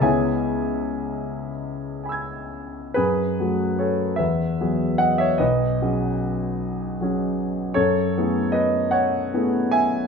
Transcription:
<<
  \new Staff \with { instrumentName = "Grand piano" } { \time 6/8 \key fis \dorian \tempo 4. = 50 <gis' cis'' e'' gis''>4. r8 <gis'' b'' e''' gis'''>4 | <gis' b'>4 <a' cis''>8 <b' e''>4 <dis'' fis''>16 <cis'' e''>16 | <b' dis''>2~ <b' dis''>8 r8 | <a' cis''>4 <b' dis''>8 <cis'' fis''>4 <e'' gis''>8 | }
  \new Staff \with { instrumentName = "Grand piano" } { \time 6/8 \key fis \dorian <cis, gis b e'>2. | fis,8 <fis a fis' gis'>4 e,8 <fis b fis' gis'>4 | b,,8 <fis cis' fis' gis'>4. <fis cis' fis' gis'>4 | fis,8 <a b e' gis'>4. <a b e' gis'>4 | }
>>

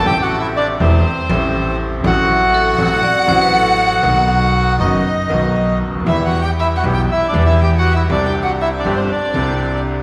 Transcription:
<<
  \new Staff \with { instrumentName = "Violin" } { \time 4/4 \key e \minor \tempo 4 = 120 \tuplet 3/2 { g''8 fis''8 e''8 } d''8 c''2 r8 | fis''1~ | fis''4. dis''2 r8 | \tuplet 3/2 { e''8 fis''8 g''8 e''8 fis''8 g''8 e''8 d''8 e''8 g''8 fis''8 e''8 } |
\tuplet 3/2 { d''8 g''8 fis''8 e''8 d''8 c''8 } d''4. r8 | }
  \new Staff \with { instrumentName = "Vibraphone" } { \time 4/4 \key e \minor r1 | r4 a'4 d''8 c''16 b'16 a'4~ | a'4 r2. | r1 |
r1 | }
  \new Staff \with { instrumentName = "Bandoneon" } { \time 4/4 \key e \minor \tuplet 3/2 { <g' g''>8 <fis' fis''>8 <e' e''>8 } <d' d''>8 <c' c''>2 r8 | <fis' fis''>1~ | <fis' fis''>4. <dis' dis''>2 r8 | \tuplet 3/2 { <e' e''>8 <fis' fis''>8 <g' g''>8 <e' e''>8 <fis' fis''>8 <g' g''>8 <e' e''>8 <d' d''>8 <e' e''>8 <g' g''>8 <fis' fis''>8 <e' e''>8 } |
\tuplet 3/2 { <d' d''>8 <g' g''>8 <fis' fis''>8 <e' e''>8 <d' d''>8 <c' c''>8 } <d' d''>4. r8 | }
  \new Staff \with { instrumentName = "Bandoneon" } { \time 4/4 \key e \minor <a c' g'>4. <a c' g'>8 r8 <a c' g'>4. | <a c' fis'>4. <a c' fis'>8 r8 <a c' fis'>4. | <b dis' fis'>4. <b dis' fis'>8 r8 <b dis' fis'>4. | <b e' g'>4. <b e' g'>8 r8 <b e' g'>4. |
<c' d' g'>4. <c' d' g'>8 r8 <c' d' g'>4. | }
  \new Staff \with { instrumentName = "Upright piano" } { \clef bass \time 4/4 \key e \minor << { <a,, a, c g a e'>4. <e,, e, c g a e'>8 r8 <a,, a, c g a e'>4. | <a,, a, c fis a fis'>4. <a,, a, c fis a fis'>8 r8 <a,, a, c fis a fis'>4. | <b,, b, dis fis b fis'>4. <fis,, fis, dis fis b fis'>8 r8 <b,, b, dis fis b fis'>4. | <e, e g b g'>4. <b,, b, e g b g'>8 r8 <e, e g b g'>4. |
<c, c d g c' g'>4. <g,, g, d g c' g'>8 r8 <c, c d g c' g'>4. | } \\ { r1 | r1 | r2. r8 r32 cis,32 d,32 dis,32 | r1 |
r1 | } >> }
  \new Staff \with { instrumentName = "Upright bass" } { \clef bass \time 4/4 \key e \minor a,,4~ a,,16. r32 e,,16. r8 r32 a,,4~ a,,16. r32 | a,,4~ a,,16. r32 a,,16. r8 r32 a,,4~ a,,16. r32 | b,,4~ b,,16. r32 fis,,16. r8 r32 b,,4~ b,,32 cis,32 d,32 dis,32 | e,4~ e,16. r32 b,,16. r8 r32 e,4~ e,16. r32 |
c,4~ c,16. r32 g,,16. r8 r32 c,4~ c,16. r32 | }
>>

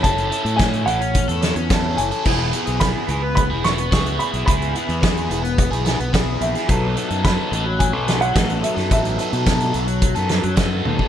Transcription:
<<
  \new Staff \with { instrumentName = "Upright piano" } { \time 4/4 \key e \major \tempo 4 = 108 a''4 gis''8 fis''2 gis''8~ | gis''4 b''4 b''8 cis'''4 b''8 | b''2.~ b''8 e''8~ | e''4 b''4 gis''8. fis''8. e''8 |
e''2. r4 | }
  \new Staff \with { instrumentName = "Overdriven electric guitar" } { \time 4/4 \key e \major <cis' e' a'>8 <cis' e' a'>16 <e' a'>16 <cis' e' a'>8 <cis' e' a'>8. <e' a'>16 <cis' e' a'>8 <cis' e' a'>8. <e' a'>16 | <b e' gis'>8 <b e' gis'>16 <e' gis'>16 <b e' gis'>8 <b e' gis'>8. <e' gis'>16 <b e' gis'>8 <b e' gis'>8. <e' gis'>16 | <b e' gis'>8 <b e' gis'>16 <e' gis'>16 <b e' gis'>8 <b e' gis'>8. <e' gis'>16 <b e' gis'>8 <b e' gis'>8. <e' gis'>16 | <fis b dis' a'>8 <fis b dis' a'>16 <b dis' a'>16 <fis b dis' a'>8 <fis b dis' a'>8. <b dis' a'>16 <fis b dis' a'>8 <fis b dis' a'>8. <b dis' a'>16 |
<fis b dis' a'>8 <fis b dis' a'>16 <b dis' a'>16 <fis b dis' a'>8 <fis b dis' a'>8. <b dis' a'>16 <fis b dis' a'>8 <fis b dis' a'>8. <b dis' a'>16 | }
  \new Staff \with { instrumentName = "Fingered electric bass" } { \clef bass \time 4/4 \key e \major fis,,8 r16 a,8. a,,8. e,8 e,8. fis,,16 r16 | e,,8 r16 b,,8 r16 cis,8. e,,8. cis,8 r16 b,,16 | cis,8 r16 e,8. e,,8. b,,8 b,,8. ais,,16 r16 | b,,8 r16 fis,8 r16 a,,8. b,,8. a,,8 r16 fis,16 |
a,,8 r16 b,8. b,,8. fis,8 fis,8. dis,16 r16 | }
  \new DrumStaff \with { instrumentName = "Drums" } \drummode { \time 4/4 <hh bd>16 hh16 hh16 hh16 <hh bd sn>16 hh16 hh16 hh16 <hh bd>16 hh16 <hh sn>16 hh16 <hh bd sn>8 hh16 hh16 | <cymc bd>8 hh16 hh16 <hh bd sn>8 hh8 <hh bd>8 <hh sn>16 hh16 <hh bd sn>16 hh16 hh16 hh16 | <hh bd>16 hh16 hh16 hh16 <hh bd sn>16 hh16 hh16 hh16 <hh bd>16 hh16 <hh sn>16 hh16 <hh bd sn>8 hh16 <hh sn>16 | <hh bd>8 hh16 hh16 <hh bd sn>8 hh8 <hh bd>8 <hh sn>16 hh16 <hh bd sn>16 hh16 hh16 <hh sn>16 |
<hh bd>16 hh16 hh16 hh16 <hh bd sn>16 hh16 hh16 hh16 <hh bd>16 hh16 <hh sn>16 hh16 <hh bd sn>8 tommh16 bd16 | }
>>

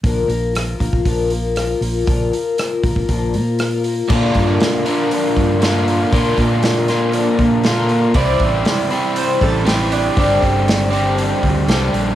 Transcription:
<<
  \new Staff \with { instrumentName = "Mandolin" } { \time 4/4 \key bes \lydian \tempo 4 = 119 r1 | r1 | r1 | r1 |
d''2 c''8 a'8 g'8 d'8~ | d'2~ d'8 r4. | }
  \new Staff \with { instrumentName = "Twelve-string acoustic guitar" } { \time 4/4 \key bes \lydian <bes, d f bes f' bes'>8 <f bes f' bes'>8 <f bes f' bes'>8 <f bes f' bes'>8 <bes, d f bes f' bes'>8 <f bes f' bes'>8 <f bes f' bes'>8 <f bes f' bes'>8 | <bes, d f bes f' bes'>8 <f bes f' bes'>8 <f bes f' bes'>8 <f bes f' bes'>8 <bes, d f bes f' bes'>8 <f bes f' bes'>8 <f bes f' bes'>8 <f bes f' bes'>8 | <bes, d f bes d' bes'>8 <f bes d' bes'>8 <f bes d' bes'>8 <f bes d' bes'>8 <bes, d f bes d' bes'>8 <f bes d' bes'>8 <f bes d' bes'>8 <f bes d' bes'>8 | <bes, d f bes d' bes'>8 <f bes d' bes'>8 <f bes d' bes'>8 <f bes d' bes'>8 <bes, d f bes d' bes'>8 <f bes d' bes'>8 <f bes d' bes'>8 <f bes d' bes'>8 |
<c g c' e' c''>8 <c' e' c''>8 <g c' e' c''>8 <c' e' c''>8 <c g c' e' c''>8 <e' c''>8 <g c' e' c''>8 <c' e' c''>8 | <g, d g c' d' c''>8 <c' d' c''>8 <g c' d' c''>8 <g c' d' c''>8 <g, d g c' d' c''>8 <g c' d' c''>8 <g c' d' c''>8 <g c' d' c''>8 | }
  \new Staff \with { instrumentName = "Overdriven electric guitar" } { \time 4/4 \key bes \lydian r1 | r1 | <bes, d bes d' f'>4. <bes, d bes d' f'>4. <bes, d bes d' f'>4 | <bes, d bes d' f'>4. <bes, d bes d' f'>4. <bes, d bes d' f'>4 |
<c e g c' e'>4. <c e g c' e'>4. <c e g c' e'>4 | <g, d g c' d' g'>4. <g, d g c' d' g'>4. <g, d g c' d' g'>4 | }
  \new Staff \with { instrumentName = "Fingered electric bass" } { \clef bass \time 4/4 \key bes \lydian bes,,8 bes,,4 bes,,16 bes,,16 bes,,4. bes,,8 | bes,,8 r4 bes,,16 bes,,16 bes,,8 bes,4. | bes,8 g,8 r4. g,4. | bes,8 bes,2 bes,4. |
c,8 a,,8 r4. a,,4. | g,,8 g,,2 d,8 c,8 bes,,8 | }
  \new DrumStaff \with { instrumentName = "Drums" } \drummode { \time 4/4 <hho bd>8 hho8 <hho ss>8 <hho bd>16 bd16 <hho bd>8 hho8 <hho ss>8 hho8 | <hho bd>8 hho8 <hho ss>8 <hho bd>16 bd16 <hho bd>8 hho8 <hho ss>8 hho8 | <cymc bd>8 <hho bd>8 <hho sn>8 hho8 hho8 <hho bd>8 <hho sn>8 hho8 | <hho bd>8 <hho bd>8 <hho sn>8 <hho sn>8 hho8 <hho bd>8 <hho sn>8 hho8 |
<hho bd>8 <hho bd>8 <hho sn>8 hho8 hho8 <hho bd>8 <hho sn>8 hho8 | <hho bd>8 <hho bd>8 <hho sn>8 hho8 hho8 <hho bd>8 <hho sn>8 hho8 | }
>>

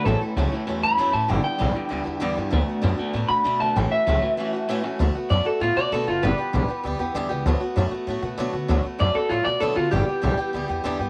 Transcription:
<<
  \new Staff \with { instrumentName = "Clean electric guitar" } { \time 4/4 \key d \major \tempo 4 = 195 a'8 r2 b''4 a''8 | g''8 g''2. r8 | r2 r8 b''4 a''8 | g''8 e''2. r8 |
r4 d''8 a'8 f'8 d''8 a'8 f'8 | b'2. r4 | r1 | r4 d''8 a'8 f'8 d''8 a'8 f'8 |
g'2. r4 | }
  \new Staff \with { instrumentName = "Steel-string acoustic guitar" } { \time 4/4 \key d \major <a, fis a cis' e'>8 <a cis' e'>8 <a, fis a cis' e'>8 <a cis' e'>8 <fis a cis' e'>8 <a cis' e'>8 <a, fis a cis' e'>8 <a cis' e'>8 | <g, d e g b e'>8 <e g b e'>8 <g, d e g b e'>8 <e g b e'>8 <e g b e'>8 <e g b e'>8 <g, d e g b e'>8 <e g b e'>8 | <d a b fis'>8 <a b fis'>8 <d a b fis'>8 <a b fis'>8 <d a b fis'>8 <a b fis'>8 <d a b fis'>8 <a b fis'>8 | <a, e a cis' fis'>8 <a cis' fis'>8 <a, e a cis' fis'>8 <a cis' fis'>8 <e a cis' fis'>8 <a cis' fis'>8 <a, e a cis' fis'>8 <a cis' fis'>8 |
<d a b fis'>8 <a b fis'>8 <d a b fis'>8 <a b fis'>8 <d a b fis'>8 <a b fis'>8 <d a b fis'>8 <a b fis'>8 | <g, d e g b g'>8 <e g b g'>8 <g, d e g b g'>8 <e g b g'>8 <e g b g'>8 <e g b g'>8 <g, d e g b g'>8 <e g b g'>8 | <d fis a b fis'>8 <a b fis'>8 <d fis a b fis'>8 <a b fis'>8 <fis a b fis'>8 <a b fis'>8 <d fis a b fis'>8 <a b fis'>8 | <d fis a b fis'>8 <a b fis'>8 <d fis a b fis'>8 <a b fis'>8 <fis a b fis'>8 <a b fis'>8 <d fis a b fis'>8 <a b fis'>8 |
<g, d e g b g'>8 <e g b g'>8 <g, d e g b g'>8 <e g b g'>8 <e g b g'>8 <e g b g'>8 <g, d e g b g'>8 <e g b g'>8 | }
  \new Staff \with { instrumentName = "Clean electric guitar" } { \clef bass \time 4/4 \key d \major <a, e>4 <a, fis>8 <a, e>8 <a, e>4 <a, e>8 <a, e>8 | <g, d>4 <g, e>8 <g, d>8 <g, d>4 <g, d>8 <g, d>8 | <d a>4 <d b>8 <d a>8 <d a>4 <d a>8 <d a>8 | <a, e>4 <a, fis>8 <a, e>8 <a, e>4 <a, e>8 <a, e>8 |
r1 | r1 | r1 | r1 |
r1 | }
  \new Staff \with { instrumentName = "Upright bass" } { \clef bass \time 4/4 \key d \major a,,8 r8 cis,8 r8 e,8 g,8 fis,8 a,8 | g,,8 r8 b,,8 r8 d,8 e,8 e,8 g,8 | d,8 r8 fis,8 r8 a,8 b,8 b,8 b,,8 | a,,8 r8 cis,8 r2 r8 |
d,8 r8 fis,8 r8 a,8 b,8 b,8 fis,,8 | g,,8 r8 b,,8 r8 d,8 e,8 e,8 cis,8 | d,8 r8 fis,8 r8 a,8 b,8 b,8 d8 | d,8 r8 fis,8 r8 a,8 b,8 b,8 d8 |
g,,8 r8 b,,8 r8 d,8 e,8 e,8 g,8 | }
>>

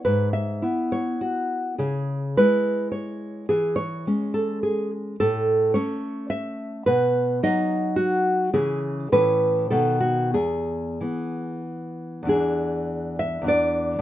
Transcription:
\new Staff \with { instrumentName = "Nylon-string guitar" } { \time 3/4 \key e \major \tempo 4 = 104 << { b'8 e''4 cis''8 fis'4 | gis'4 b'4 cis''4 | gis'8 cis''4 a'8 gis'8 r8 | a'4 cis''4 e''4 |
b'4 dis''4 fis'4 | gis'4 b'4 a'8 fis'8 | gis'2 r4 | gis'4. e''8 d''4 | } \\ { gis,4 <b e'>2 | cis4 <gis e'>2 | e4 <gis cis'>2 | a,4 <a cis'>2 |
b,4 <fis dis'>2 | <cis e cis'>4 <a, e cis'>4 <b, dis b>4 | e,4 <e b>2 | <e, e d'>2 <e, e d'>4 | } >> }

